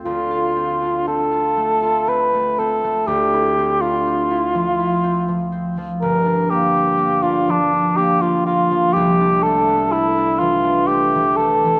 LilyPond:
<<
  \new Staff \with { instrumentName = "Cor anglais" } { \time 3/4 \key d \minor \tempo 4 = 61 f'4 a'4 b'8 a'8 | g'8. f'4.~ f'16 r8 | bes'8 g'8. f'16 d'8 g'16 f'16 f'8 | g'8 a'8 e'8 f'8 g'8 a'8 | }
  \new Staff \with { instrumentName = "Harp" } { \time 3/4 \key d \minor <d, c' f' a'>16 f'16 c'16 d'16 c'16 f'16 a16 f'16 c'16 a16 c'16 a16 | d,16 e'16 c'16 d'16 c'16 e'16 f16 e'16 c'16 f16 c'16 f16 | g,,16 d'16 bes16 c'16 bes16 d'16 f16 d'16 bes16 f16 bes16 f16 | c,16 d'16 a16 b16 a16 d'16 e16 d'16 a16 e16 a16 e16 | }
>>